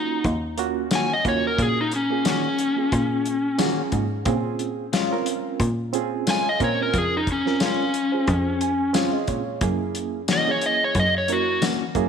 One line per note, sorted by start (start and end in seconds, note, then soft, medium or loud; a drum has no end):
0.00 0.33 A#3 medium
0.00 0.33 C#4 medium
0.00 0.25 D#4 medium
0.00 0.34 F4 medium
0.00 0.34 F#4 medium
0.24 1.05 D#2 loud
0.24 kick medium
0.24 closed hi-hat medium
0.58 1.06 A#3 medium
0.58 1.06 C#4 medium
0.58 1.06 F4 medium
0.58 1.06 F#4 loud
0.58 closed hi-hat medium
0.91 1.13 D#3 medium
0.91 1.13 A#3 medium
0.91 1.13 C#4 medium
0.91 1.14 F#4 medium
0.91 snare loud
0.91 closed hi-hat medium
0.91 tambourine loud
0.95 1.11 G#5 medium
1.13 1.26 D#5 medium
1.25 1.52 D#2 medium
1.25 1.84 A#3 medium
1.25 1.84 C#4 medium
1.25 1.84 F4 medium
1.25 1.85 F#4 medium
1.25 1.45 C#5 medium
1.25 kick medium
1.25 closed hi-hat medium
1.47 1.60 A#4 medium
1.58 2.66 A#2 loud
1.58 1.78 G#4 medium
1.58 kick loud
1.58 closed hi-hat medium
1.81 1.94 D#4 medium
1.92 closed hi-hat medium
1.96 2.26 C#4 medium
2.10 2.56 A#3 medium
2.10 2.56 C#4 medium
2.10 2.56 F4 medium
2.10 2.56 G#4 medium
2.25 2.47 D#3 medium
2.25 2.47 A#3 medium
2.25 2.47 C#4 medium
2.25 2.47 F#4 medium
2.25 snare loud
2.25 closed hi-hat medium
2.25 tambourine medium
2.30 3.58 C#4 loud
2.58 closed hi-hat medium
2.77 3.34 A#3 medium
2.77 3.34 C#4 medium
2.77 3.35 F4 medium
2.77 3.35 G#4 medium
2.92 3.73 A#2 loud
2.92 kick medium
2.92 closed hi-hat medium
3.26 closed hi-hat medium
3.58 3.80 D#3 medium
3.58 4.06 A#3 medium
3.58 3.81 A#3 medium
3.58 4.07 C#4 medium
3.58 3.81 C#4 medium
3.58 4.07 F4 medium
3.58 3.81 F#4 medium
3.58 4.08 G#4 loud
3.58 snare loud
3.58 closed hi-hat medium
3.58 tambourine loud
3.92 4.19 G#2 medium
3.92 kick medium
3.92 closed hi-hat medium
4.25 5.33 A#2 loud
4.25 4.85 C4 loud
4.25 4.85 C#4 medium
4.25 4.86 F4 medium
4.25 4.86 G#4 loud
4.25 kick loud
4.25 closed hi-hat medium
4.59 closed hi-hat medium
4.93 5.14 G#3 medium
4.93 5.15 C#4 medium
4.93 5.15 F4 loud
4.93 snare loud
4.93 closed hi-hat medium
4.93 tambourine loud
5.11 5.69 C4 medium
5.11 5.69 C#4 medium
5.11 5.69 F4 medium
5.11 5.69 A#4 medium
5.26 closed hi-hat medium
5.60 6.40 A#2 loud
5.60 kick medium
5.60 closed hi-hat medium
5.93 6.41 C4 medium
5.93 6.41 C#4 medium
5.93 6.42 F4 medium
5.93 6.42 G#4 loud
5.93 closed hi-hat medium
6.27 6.48 G#3 medium
6.27 6.49 C#4 medium
6.27 6.49 F4 medium
6.27 6.47 G#5 loud
6.27 snare loud
6.27 closed hi-hat medium
6.27 tambourine loud
6.49 6.62 D#5 medium
6.60 6.87 A#2 medium
6.60 7.19 C4 medium
6.60 7.19 C#4 medium
6.60 7.20 F4 medium
6.60 7.20 A#4 loud
6.60 6.80 C#5 medium
6.60 kick medium
6.60 closed hi-hat medium
6.82 6.96 A#4 medium
6.93 8.01 F2 medium
6.93 kick loud
6.93 closed hi-hat medium
6.98 7.14 G#4 medium
7.17 7.29 D#4 medium
7.27 kick medium
7.27 closed hi-hat medium
7.32 7.62 C#4 medium
7.45 7.91 C4 medium
7.45 7.91 C#4 medium
7.45 7.92 F4 medium
7.45 7.92 A#4 medium
7.45 snare soft
7.60 7.82 G#3 medium
7.60 7.83 C#4 medium
7.60 7.83 F4 medium
7.60 snare loud
7.60 closed hi-hat medium
7.60 tambourine loud
7.66 8.93 C#4 medium
7.94 closed hi-hat medium
8.12 8.70 C#4 medium
8.12 8.71 F4 medium
8.12 8.71 G#4 medium
8.12 8.70 C5 medium
8.28 9.08 F2 loud
8.28 kick medium
8.28 closed hi-hat medium
8.61 8.93 G#5 medium
8.61 closed hi-hat medium
8.93 9.16 G#3 medium
8.93 9.42 C4 medium
8.93 9.42 C#4 medium
8.93 9.17 C#4 medium
8.93 9.43 F4 medium
8.93 9.17 F4 medium
8.93 9.43 G#4 loud
8.93 9.12 F5 medium
8.93 snare loud
8.93 closed hi-hat medium
8.93 tambourine loud
9.13 9.27 D#5 medium
9.27 9.55 A#2 medium
9.27 9.59 C#5 medium
9.27 kick medium
9.27 closed hi-hat medium
9.61 10.69 F#2 loud
9.61 10.20 A#3 medium
9.61 10.21 C#4 medium
9.61 10.21 E4 medium
9.61 10.21 G#4 medium
9.61 kick loud
9.61 closed hi-hat medium
9.95 closed hi-hat medium
10.28 10.50 E3 medium
10.28 10.50 A#3 medium
10.28 10.50 C#4 medium
10.28 10.50 F#4 medium
10.28 snare loud
10.28 closed hi-hat medium
10.28 tambourine loud
10.33 10.49 D#5 loud
10.46 11.04 A#3 medium
10.46 11.04 C#4 medium
10.46 11.04 E4 medium
10.46 11.05 G#4 medium
10.51 10.64 C#5 medium
10.61 closed hi-hat medium
10.66 10.82 D#5 medium
10.84 10.97 C#5 medium
10.95 11.76 F#2 loud
10.95 kick medium
10.95 closed hi-hat medium
11.00 11.15 D#5 medium
11.18 11.31 C#5 medium
11.28 11.76 A#3 medium
11.28 11.77 C#4 medium
11.28 11.77 E4 medium
11.28 11.77 A#4 medium
11.28 closed hi-hat medium
11.33 11.63 F#4 medium
11.61 11.83 E3 medium
11.61 11.84 A#3 medium
11.61 11.84 C#4 medium
11.61 11.84 F#4 medium
11.61 snare loud
11.61 closed hi-hat medium
11.61 tambourine loud
11.95 12.09 F#2 medium
11.95 12.09 A#3 loud
11.95 12.09 C#4 medium
11.95 12.09 E4 medium
11.95 12.09 G#4 loud
11.95 kick medium
11.95 closed hi-hat medium